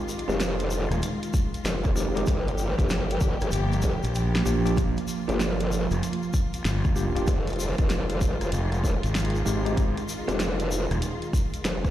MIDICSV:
0, 0, Header, 1, 6, 480
1, 0, Start_track
1, 0, Tempo, 625000
1, 1747, Time_signature, 4, 2, 24, 8
1, 9142, End_track
2, 0, Start_track
2, 0, Title_t, "Tine electric piano"
2, 0, Program_c, 0, 4
2, 215, Note_on_c, 0, 56, 83
2, 215, Note_on_c, 0, 60, 78
2, 215, Note_on_c, 0, 63, 77
2, 216, Note_on_c, 0, 67, 91
2, 320, Note_off_c, 0, 56, 0
2, 320, Note_off_c, 0, 60, 0
2, 320, Note_off_c, 0, 63, 0
2, 320, Note_off_c, 0, 67, 0
2, 1502, Note_on_c, 0, 56, 95
2, 1503, Note_on_c, 0, 60, 89
2, 1503, Note_on_c, 0, 63, 89
2, 1503, Note_on_c, 0, 67, 101
2, 1635, Note_off_c, 0, 56, 0
2, 1635, Note_off_c, 0, 60, 0
2, 1635, Note_off_c, 0, 63, 0
2, 1635, Note_off_c, 0, 67, 0
2, 1654, Note_on_c, 0, 60, 84
2, 1654, Note_on_c, 0, 67, 105
2, 1655, Note_on_c, 0, 63, 89
2, 1656, Note_on_c, 0, 56, 96
2, 1733, Note_off_c, 0, 60, 0
2, 1733, Note_off_c, 0, 67, 0
2, 1734, Note_off_c, 0, 56, 0
2, 1734, Note_off_c, 0, 63, 0
2, 2134, Note_on_c, 0, 58, 86
2, 2135, Note_on_c, 0, 65, 76
2, 2135, Note_on_c, 0, 67, 91
2, 2136, Note_on_c, 0, 62, 75
2, 2239, Note_off_c, 0, 58, 0
2, 2240, Note_off_c, 0, 62, 0
2, 2240, Note_off_c, 0, 65, 0
2, 2240, Note_off_c, 0, 67, 0
2, 3423, Note_on_c, 0, 67, 104
2, 3424, Note_on_c, 0, 58, 91
2, 3424, Note_on_c, 0, 62, 89
2, 3425, Note_on_c, 0, 65, 86
2, 3555, Note_off_c, 0, 67, 0
2, 3556, Note_off_c, 0, 58, 0
2, 3556, Note_off_c, 0, 62, 0
2, 3556, Note_off_c, 0, 65, 0
2, 3576, Note_on_c, 0, 65, 87
2, 3576, Note_on_c, 0, 67, 104
2, 3577, Note_on_c, 0, 58, 92
2, 3577, Note_on_c, 0, 62, 87
2, 3680, Note_off_c, 0, 65, 0
2, 3680, Note_off_c, 0, 67, 0
2, 3681, Note_off_c, 0, 58, 0
2, 3681, Note_off_c, 0, 62, 0
2, 4054, Note_on_c, 0, 58, 83
2, 4055, Note_on_c, 0, 62, 77
2, 4055, Note_on_c, 0, 67, 93
2, 4056, Note_on_c, 0, 65, 77
2, 4159, Note_off_c, 0, 58, 0
2, 4160, Note_off_c, 0, 62, 0
2, 4160, Note_off_c, 0, 65, 0
2, 4160, Note_off_c, 0, 67, 0
2, 5343, Note_on_c, 0, 58, 95
2, 5343, Note_on_c, 0, 67, 108
2, 5344, Note_on_c, 0, 62, 88
2, 5344, Note_on_c, 0, 65, 89
2, 5475, Note_off_c, 0, 58, 0
2, 5475, Note_off_c, 0, 65, 0
2, 5475, Note_off_c, 0, 67, 0
2, 5476, Note_off_c, 0, 62, 0
2, 5495, Note_on_c, 0, 58, 91
2, 5496, Note_on_c, 0, 62, 84
2, 5497, Note_on_c, 0, 65, 83
2, 5497, Note_on_c, 0, 67, 103
2, 5574, Note_off_c, 0, 58, 0
2, 5574, Note_off_c, 0, 62, 0
2, 5575, Note_off_c, 0, 65, 0
2, 5575, Note_off_c, 0, 67, 0
2, 5977, Note_on_c, 0, 60, 75
2, 5977, Note_on_c, 0, 67, 91
2, 5978, Note_on_c, 0, 56, 83
2, 5978, Note_on_c, 0, 63, 76
2, 6081, Note_off_c, 0, 56, 0
2, 6081, Note_off_c, 0, 60, 0
2, 6081, Note_off_c, 0, 63, 0
2, 6081, Note_off_c, 0, 67, 0
2, 7262, Note_on_c, 0, 63, 90
2, 7263, Note_on_c, 0, 67, 105
2, 7264, Note_on_c, 0, 56, 98
2, 7264, Note_on_c, 0, 60, 86
2, 7395, Note_off_c, 0, 56, 0
2, 7395, Note_off_c, 0, 63, 0
2, 7395, Note_off_c, 0, 67, 0
2, 7396, Note_off_c, 0, 60, 0
2, 7414, Note_on_c, 0, 56, 94
2, 7414, Note_on_c, 0, 60, 86
2, 7414, Note_on_c, 0, 63, 81
2, 7414, Note_on_c, 0, 67, 105
2, 7519, Note_off_c, 0, 56, 0
2, 7519, Note_off_c, 0, 60, 0
2, 7519, Note_off_c, 0, 63, 0
2, 7519, Note_off_c, 0, 67, 0
2, 7892, Note_on_c, 0, 67, 96
2, 7893, Note_on_c, 0, 56, 82
2, 7893, Note_on_c, 0, 60, 77
2, 7893, Note_on_c, 0, 63, 73
2, 7999, Note_off_c, 0, 56, 0
2, 7999, Note_off_c, 0, 60, 0
2, 7999, Note_off_c, 0, 63, 0
2, 7999, Note_off_c, 0, 67, 0
2, 9142, End_track
3, 0, Start_track
3, 0, Title_t, "String section"
3, 0, Program_c, 1, 48
3, 0, Note_on_c, 1, 51, 76
3, 0, Note_on_c, 1, 56, 70
3, 0, Note_on_c, 1, 65, 87
3, 1713, Note_off_c, 1, 56, 0
3, 1714, Note_off_c, 1, 51, 0
3, 1714, Note_off_c, 1, 65, 0
3, 1740, Note_on_c, 1, 53, 79
3, 1743, Note_on_c, 1, 58, 73
3, 1744, Note_on_c, 1, 67, 91
3, 3646, Note_off_c, 1, 67, 0
3, 3665, Note_on_c, 1, 65, 86
3, 5553, Note_off_c, 1, 53, 0
3, 5554, Note_off_c, 1, 58, 0
3, 5588, Note_on_c, 1, 51, 78
3, 5588, Note_on_c, 1, 56, 73
3, 9142, Note_off_c, 1, 51, 0
3, 9142, Note_off_c, 1, 56, 0
3, 9142, Note_off_c, 1, 65, 0
3, 9142, End_track
4, 0, Start_track
4, 0, Title_t, "Fingered electric bass"
4, 0, Program_c, 2, 33
4, 696, Note_on_c, 2, 27, 102
4, 771, Note_off_c, 2, 27, 0
4, 2707, Note_on_c, 2, 31, 95
4, 2933, Note_off_c, 2, 31, 0
4, 3099, Note_on_c, 2, 34, 101
4, 3412, Note_off_c, 2, 34, 0
4, 3424, Note_on_c, 2, 34, 94
4, 3794, Note_off_c, 2, 34, 0
4, 4539, Note_on_c, 2, 29, 102
4, 4613, Note_off_c, 2, 29, 0
4, 5106, Note_on_c, 2, 31, 104
4, 5572, Note_off_c, 2, 31, 0
4, 6548, Note_on_c, 2, 29, 94
4, 6773, Note_off_c, 2, 29, 0
4, 6942, Note_on_c, 2, 32, 102
4, 7254, Note_off_c, 2, 32, 0
4, 7268, Note_on_c, 2, 32, 92
4, 7636, Note_off_c, 2, 32, 0
4, 8378, Note_on_c, 2, 27, 99
4, 8452, Note_off_c, 2, 27, 0
4, 9142, End_track
5, 0, Start_track
5, 0, Title_t, "Wobble bass"
5, 0, Program_c, 3, 39
5, 218, Note_on_c, 3, 29, 96
5, 675, Note_off_c, 3, 29, 0
5, 1264, Note_on_c, 3, 29, 100
5, 1731, Note_off_c, 3, 29, 0
5, 1747, Note_on_c, 3, 31, 96
5, 2116, Note_off_c, 3, 31, 0
5, 2139, Note_on_c, 3, 31, 97
5, 2595, Note_off_c, 3, 31, 0
5, 2622, Note_on_c, 3, 31, 99
5, 2694, Note_off_c, 3, 31, 0
5, 2948, Note_on_c, 3, 31, 104
5, 3076, Note_off_c, 3, 31, 0
5, 4060, Note_on_c, 3, 31, 96
5, 4515, Note_off_c, 3, 31, 0
5, 5588, Note_on_c, 3, 29, 95
5, 5956, Note_off_c, 3, 29, 0
5, 5980, Note_on_c, 3, 29, 94
5, 6436, Note_off_c, 3, 29, 0
5, 6458, Note_on_c, 3, 29, 92
5, 6532, Note_off_c, 3, 29, 0
5, 6785, Note_on_c, 3, 29, 101
5, 6915, Note_off_c, 3, 29, 0
5, 7896, Note_on_c, 3, 29, 97
5, 8353, Note_off_c, 3, 29, 0
5, 8944, Note_on_c, 3, 29, 101
5, 9142, Note_off_c, 3, 29, 0
5, 9142, End_track
6, 0, Start_track
6, 0, Title_t, "Drums"
6, 64, Note_on_c, 9, 82, 95
6, 141, Note_off_c, 9, 82, 0
6, 147, Note_on_c, 9, 42, 38
6, 223, Note_on_c, 9, 82, 41
6, 224, Note_off_c, 9, 42, 0
6, 300, Note_off_c, 9, 82, 0
6, 308, Note_on_c, 9, 82, 59
6, 310, Note_on_c, 9, 38, 126
6, 310, Note_on_c, 9, 42, 84
6, 385, Note_off_c, 9, 82, 0
6, 387, Note_off_c, 9, 38, 0
6, 387, Note_off_c, 9, 42, 0
6, 453, Note_on_c, 9, 82, 30
6, 461, Note_on_c, 9, 42, 57
6, 530, Note_off_c, 9, 82, 0
6, 538, Note_off_c, 9, 42, 0
6, 541, Note_on_c, 9, 82, 97
6, 618, Note_off_c, 9, 82, 0
6, 702, Note_on_c, 9, 82, 42
6, 703, Note_on_c, 9, 37, 57
6, 703, Note_on_c, 9, 42, 39
6, 779, Note_off_c, 9, 82, 0
6, 780, Note_off_c, 9, 37, 0
6, 780, Note_off_c, 9, 42, 0
6, 785, Note_on_c, 9, 82, 57
6, 791, Note_on_c, 9, 42, 87
6, 862, Note_off_c, 9, 82, 0
6, 867, Note_off_c, 9, 42, 0
6, 944, Note_on_c, 9, 42, 41
6, 945, Note_on_c, 9, 82, 29
6, 1021, Note_off_c, 9, 42, 0
6, 1022, Note_off_c, 9, 82, 0
6, 1026, Note_on_c, 9, 82, 96
6, 1027, Note_on_c, 9, 36, 114
6, 1103, Note_off_c, 9, 82, 0
6, 1104, Note_off_c, 9, 36, 0
6, 1184, Note_on_c, 9, 82, 41
6, 1185, Note_on_c, 9, 42, 40
6, 1261, Note_off_c, 9, 82, 0
6, 1262, Note_off_c, 9, 42, 0
6, 1265, Note_on_c, 9, 82, 53
6, 1271, Note_on_c, 9, 38, 122
6, 1271, Note_on_c, 9, 42, 81
6, 1342, Note_off_c, 9, 82, 0
6, 1348, Note_off_c, 9, 38, 0
6, 1348, Note_off_c, 9, 42, 0
6, 1413, Note_on_c, 9, 82, 26
6, 1420, Note_on_c, 9, 36, 103
6, 1425, Note_on_c, 9, 37, 41
6, 1489, Note_off_c, 9, 82, 0
6, 1497, Note_off_c, 9, 36, 0
6, 1502, Note_off_c, 9, 37, 0
6, 1507, Note_on_c, 9, 82, 103
6, 1584, Note_off_c, 9, 82, 0
6, 1659, Note_on_c, 9, 82, 39
6, 1666, Note_on_c, 9, 42, 55
6, 1736, Note_off_c, 9, 82, 0
6, 1739, Note_on_c, 9, 82, 55
6, 1743, Note_off_c, 9, 42, 0
6, 1747, Note_on_c, 9, 36, 127
6, 1753, Note_on_c, 9, 37, 37
6, 1753, Note_on_c, 9, 42, 80
6, 1816, Note_off_c, 9, 82, 0
6, 1823, Note_off_c, 9, 36, 0
6, 1830, Note_off_c, 9, 37, 0
6, 1830, Note_off_c, 9, 42, 0
6, 1899, Note_on_c, 9, 82, 28
6, 1906, Note_on_c, 9, 42, 38
6, 1975, Note_off_c, 9, 82, 0
6, 1981, Note_on_c, 9, 82, 98
6, 1983, Note_off_c, 9, 42, 0
6, 2058, Note_off_c, 9, 82, 0
6, 2140, Note_on_c, 9, 36, 112
6, 2143, Note_on_c, 9, 82, 39
6, 2148, Note_on_c, 9, 42, 37
6, 2217, Note_off_c, 9, 36, 0
6, 2220, Note_off_c, 9, 82, 0
6, 2223, Note_on_c, 9, 82, 55
6, 2225, Note_off_c, 9, 42, 0
6, 2233, Note_on_c, 9, 38, 123
6, 2233, Note_on_c, 9, 42, 84
6, 2300, Note_off_c, 9, 82, 0
6, 2310, Note_off_c, 9, 38, 0
6, 2310, Note_off_c, 9, 42, 0
6, 2378, Note_on_c, 9, 82, 27
6, 2387, Note_on_c, 9, 42, 57
6, 2455, Note_off_c, 9, 82, 0
6, 2463, Note_on_c, 9, 82, 94
6, 2464, Note_off_c, 9, 42, 0
6, 2466, Note_on_c, 9, 36, 112
6, 2539, Note_off_c, 9, 82, 0
6, 2543, Note_off_c, 9, 36, 0
6, 2615, Note_on_c, 9, 82, 41
6, 2625, Note_on_c, 9, 37, 53
6, 2625, Note_on_c, 9, 42, 38
6, 2692, Note_off_c, 9, 82, 0
6, 2698, Note_on_c, 9, 82, 58
6, 2702, Note_off_c, 9, 37, 0
6, 2702, Note_off_c, 9, 42, 0
6, 2712, Note_on_c, 9, 42, 86
6, 2775, Note_off_c, 9, 82, 0
6, 2788, Note_off_c, 9, 42, 0
6, 2858, Note_on_c, 9, 82, 31
6, 2867, Note_on_c, 9, 42, 38
6, 2934, Note_off_c, 9, 82, 0
6, 2934, Note_on_c, 9, 82, 92
6, 2944, Note_off_c, 9, 42, 0
6, 2947, Note_on_c, 9, 36, 69
6, 3010, Note_off_c, 9, 82, 0
6, 3024, Note_off_c, 9, 36, 0
6, 3095, Note_on_c, 9, 82, 42
6, 3107, Note_on_c, 9, 42, 41
6, 3172, Note_off_c, 9, 82, 0
6, 3184, Note_off_c, 9, 42, 0
6, 3184, Note_on_c, 9, 82, 61
6, 3193, Note_on_c, 9, 42, 77
6, 3261, Note_off_c, 9, 82, 0
6, 3270, Note_off_c, 9, 42, 0
6, 3339, Note_on_c, 9, 82, 29
6, 3344, Note_on_c, 9, 38, 124
6, 3416, Note_off_c, 9, 82, 0
6, 3421, Note_off_c, 9, 38, 0
6, 3425, Note_on_c, 9, 82, 95
6, 3502, Note_off_c, 9, 82, 0
6, 3576, Note_on_c, 9, 82, 43
6, 3584, Note_on_c, 9, 42, 58
6, 3653, Note_off_c, 9, 82, 0
6, 3661, Note_off_c, 9, 42, 0
6, 3663, Note_on_c, 9, 82, 58
6, 3666, Note_on_c, 9, 36, 127
6, 3672, Note_on_c, 9, 37, 37
6, 3672, Note_on_c, 9, 42, 82
6, 3740, Note_off_c, 9, 82, 0
6, 3743, Note_off_c, 9, 36, 0
6, 3749, Note_off_c, 9, 37, 0
6, 3749, Note_off_c, 9, 42, 0
6, 3814, Note_on_c, 9, 82, 25
6, 3824, Note_on_c, 9, 42, 35
6, 3891, Note_off_c, 9, 82, 0
6, 3899, Note_on_c, 9, 82, 93
6, 3901, Note_off_c, 9, 42, 0
6, 3975, Note_off_c, 9, 82, 0
6, 4062, Note_on_c, 9, 42, 37
6, 4064, Note_on_c, 9, 82, 38
6, 4139, Note_off_c, 9, 42, 0
6, 4140, Note_off_c, 9, 82, 0
6, 4148, Note_on_c, 9, 38, 124
6, 4149, Note_on_c, 9, 82, 60
6, 4225, Note_off_c, 9, 38, 0
6, 4225, Note_off_c, 9, 82, 0
6, 4295, Note_on_c, 9, 82, 28
6, 4305, Note_on_c, 9, 42, 56
6, 4372, Note_off_c, 9, 82, 0
6, 4382, Note_off_c, 9, 42, 0
6, 4390, Note_on_c, 9, 82, 94
6, 4467, Note_off_c, 9, 82, 0
6, 4538, Note_on_c, 9, 82, 42
6, 4545, Note_on_c, 9, 37, 54
6, 4545, Note_on_c, 9, 42, 37
6, 4615, Note_off_c, 9, 82, 0
6, 4622, Note_off_c, 9, 37, 0
6, 4622, Note_off_c, 9, 42, 0
6, 4631, Note_on_c, 9, 42, 82
6, 4633, Note_on_c, 9, 82, 60
6, 4708, Note_off_c, 9, 42, 0
6, 4708, Note_on_c, 9, 42, 40
6, 4710, Note_off_c, 9, 82, 0
6, 4780, Note_on_c, 9, 82, 27
6, 4785, Note_off_c, 9, 42, 0
6, 4857, Note_off_c, 9, 82, 0
6, 4866, Note_on_c, 9, 82, 97
6, 4867, Note_on_c, 9, 36, 110
6, 4943, Note_off_c, 9, 82, 0
6, 4944, Note_off_c, 9, 36, 0
6, 5019, Note_on_c, 9, 82, 44
6, 5022, Note_on_c, 9, 42, 39
6, 5096, Note_off_c, 9, 82, 0
6, 5098, Note_off_c, 9, 42, 0
6, 5108, Note_on_c, 9, 38, 120
6, 5108, Note_on_c, 9, 42, 76
6, 5112, Note_on_c, 9, 82, 61
6, 5184, Note_off_c, 9, 38, 0
6, 5184, Note_off_c, 9, 42, 0
6, 5189, Note_off_c, 9, 82, 0
6, 5257, Note_on_c, 9, 82, 27
6, 5260, Note_on_c, 9, 36, 108
6, 5334, Note_off_c, 9, 82, 0
6, 5337, Note_off_c, 9, 36, 0
6, 5345, Note_on_c, 9, 82, 101
6, 5422, Note_off_c, 9, 82, 0
6, 5500, Note_on_c, 9, 82, 40
6, 5502, Note_on_c, 9, 42, 50
6, 5577, Note_off_c, 9, 82, 0
6, 5579, Note_off_c, 9, 42, 0
6, 5584, Note_on_c, 9, 82, 52
6, 5588, Note_on_c, 9, 36, 122
6, 5589, Note_on_c, 9, 37, 40
6, 5589, Note_on_c, 9, 42, 76
6, 5661, Note_off_c, 9, 82, 0
6, 5664, Note_off_c, 9, 36, 0
6, 5666, Note_off_c, 9, 37, 0
6, 5666, Note_off_c, 9, 42, 0
6, 5740, Note_on_c, 9, 42, 34
6, 5745, Note_on_c, 9, 82, 27
6, 5762, Note_off_c, 9, 42, 0
6, 5762, Note_on_c, 9, 42, 29
6, 5783, Note_off_c, 9, 42, 0
6, 5783, Note_on_c, 9, 42, 24
6, 5805, Note_off_c, 9, 42, 0
6, 5805, Note_on_c, 9, 42, 19
6, 5822, Note_off_c, 9, 82, 0
6, 5828, Note_off_c, 9, 42, 0
6, 5828, Note_on_c, 9, 42, 15
6, 5834, Note_on_c, 9, 82, 99
6, 5867, Note_off_c, 9, 42, 0
6, 5867, Note_on_c, 9, 42, 12
6, 5903, Note_off_c, 9, 42, 0
6, 5903, Note_on_c, 9, 42, 10
6, 5911, Note_off_c, 9, 82, 0
6, 5940, Note_off_c, 9, 42, 0
6, 5940, Note_on_c, 9, 42, 8
6, 5978, Note_off_c, 9, 42, 0
6, 5978, Note_on_c, 9, 42, 35
6, 5980, Note_on_c, 9, 82, 39
6, 5981, Note_on_c, 9, 36, 111
6, 6055, Note_off_c, 9, 42, 0
6, 6057, Note_off_c, 9, 82, 0
6, 6058, Note_off_c, 9, 36, 0
6, 6066, Note_on_c, 9, 38, 113
6, 6066, Note_on_c, 9, 42, 77
6, 6069, Note_on_c, 9, 82, 57
6, 6143, Note_off_c, 9, 38, 0
6, 6143, Note_off_c, 9, 42, 0
6, 6146, Note_off_c, 9, 82, 0
6, 6217, Note_on_c, 9, 82, 26
6, 6218, Note_on_c, 9, 42, 51
6, 6294, Note_off_c, 9, 82, 0
6, 6295, Note_off_c, 9, 42, 0
6, 6305, Note_on_c, 9, 82, 90
6, 6307, Note_on_c, 9, 36, 113
6, 6382, Note_off_c, 9, 82, 0
6, 6383, Note_off_c, 9, 36, 0
6, 6460, Note_on_c, 9, 37, 54
6, 6460, Note_on_c, 9, 42, 37
6, 6462, Note_on_c, 9, 82, 38
6, 6537, Note_off_c, 9, 37, 0
6, 6537, Note_off_c, 9, 42, 0
6, 6538, Note_off_c, 9, 82, 0
6, 6544, Note_on_c, 9, 42, 78
6, 6555, Note_on_c, 9, 82, 50
6, 6620, Note_off_c, 9, 42, 0
6, 6631, Note_off_c, 9, 82, 0
6, 6698, Note_on_c, 9, 42, 35
6, 6710, Note_on_c, 9, 82, 28
6, 6775, Note_off_c, 9, 42, 0
6, 6786, Note_on_c, 9, 36, 64
6, 6787, Note_off_c, 9, 82, 0
6, 6793, Note_on_c, 9, 82, 95
6, 6863, Note_off_c, 9, 36, 0
6, 6870, Note_off_c, 9, 82, 0
6, 6938, Note_on_c, 9, 42, 37
6, 6949, Note_on_c, 9, 82, 42
6, 7015, Note_off_c, 9, 42, 0
6, 7026, Note_off_c, 9, 82, 0
6, 7027, Note_on_c, 9, 38, 117
6, 7027, Note_on_c, 9, 42, 72
6, 7033, Note_on_c, 9, 82, 55
6, 7064, Note_off_c, 9, 42, 0
6, 7064, Note_on_c, 9, 42, 59
6, 7103, Note_off_c, 9, 38, 0
6, 7103, Note_off_c, 9, 42, 0
6, 7103, Note_on_c, 9, 42, 51
6, 7110, Note_off_c, 9, 82, 0
6, 7143, Note_off_c, 9, 42, 0
6, 7143, Note_on_c, 9, 42, 39
6, 7182, Note_on_c, 9, 82, 28
6, 7220, Note_off_c, 9, 42, 0
6, 7258, Note_off_c, 9, 82, 0
6, 7268, Note_on_c, 9, 82, 96
6, 7345, Note_off_c, 9, 82, 0
6, 7421, Note_on_c, 9, 42, 51
6, 7424, Note_on_c, 9, 82, 40
6, 7498, Note_off_c, 9, 42, 0
6, 7501, Note_off_c, 9, 82, 0
6, 7505, Note_on_c, 9, 36, 119
6, 7506, Note_on_c, 9, 37, 41
6, 7506, Note_on_c, 9, 42, 80
6, 7506, Note_on_c, 9, 82, 51
6, 7582, Note_off_c, 9, 36, 0
6, 7583, Note_off_c, 9, 37, 0
6, 7583, Note_off_c, 9, 42, 0
6, 7583, Note_off_c, 9, 82, 0
6, 7660, Note_on_c, 9, 42, 35
6, 7665, Note_on_c, 9, 82, 25
6, 7737, Note_off_c, 9, 42, 0
6, 7742, Note_off_c, 9, 82, 0
6, 7745, Note_on_c, 9, 82, 89
6, 7822, Note_off_c, 9, 82, 0
6, 7899, Note_on_c, 9, 82, 34
6, 7900, Note_on_c, 9, 42, 34
6, 7976, Note_off_c, 9, 82, 0
6, 7977, Note_off_c, 9, 42, 0
6, 7986, Note_on_c, 9, 38, 120
6, 7986, Note_on_c, 9, 42, 81
6, 7989, Note_on_c, 9, 82, 52
6, 8062, Note_off_c, 9, 38, 0
6, 8062, Note_off_c, 9, 42, 0
6, 8066, Note_off_c, 9, 82, 0
6, 8137, Note_on_c, 9, 82, 27
6, 8139, Note_on_c, 9, 42, 54
6, 8214, Note_off_c, 9, 82, 0
6, 8216, Note_off_c, 9, 42, 0
6, 8228, Note_on_c, 9, 82, 97
6, 8305, Note_off_c, 9, 82, 0
6, 8377, Note_on_c, 9, 82, 37
6, 8380, Note_on_c, 9, 37, 55
6, 8380, Note_on_c, 9, 42, 36
6, 8453, Note_off_c, 9, 82, 0
6, 8457, Note_off_c, 9, 37, 0
6, 8457, Note_off_c, 9, 42, 0
6, 8463, Note_on_c, 9, 42, 79
6, 8466, Note_on_c, 9, 82, 53
6, 8540, Note_off_c, 9, 42, 0
6, 8543, Note_off_c, 9, 82, 0
6, 8618, Note_on_c, 9, 42, 36
6, 8626, Note_on_c, 9, 82, 29
6, 8695, Note_off_c, 9, 42, 0
6, 8703, Note_off_c, 9, 82, 0
6, 8704, Note_on_c, 9, 36, 106
6, 8710, Note_on_c, 9, 82, 98
6, 8781, Note_off_c, 9, 36, 0
6, 8787, Note_off_c, 9, 82, 0
6, 8860, Note_on_c, 9, 42, 37
6, 8860, Note_on_c, 9, 82, 44
6, 8937, Note_off_c, 9, 42, 0
6, 8937, Note_off_c, 9, 82, 0
6, 8945, Note_on_c, 9, 82, 57
6, 8946, Note_on_c, 9, 38, 114
6, 8946, Note_on_c, 9, 42, 75
6, 9022, Note_off_c, 9, 82, 0
6, 9023, Note_off_c, 9, 38, 0
6, 9023, Note_off_c, 9, 42, 0
6, 9097, Note_on_c, 9, 36, 98
6, 9098, Note_on_c, 9, 37, 38
6, 9102, Note_on_c, 9, 82, 28
6, 9142, Note_off_c, 9, 36, 0
6, 9142, Note_off_c, 9, 37, 0
6, 9142, Note_off_c, 9, 82, 0
6, 9142, End_track
0, 0, End_of_file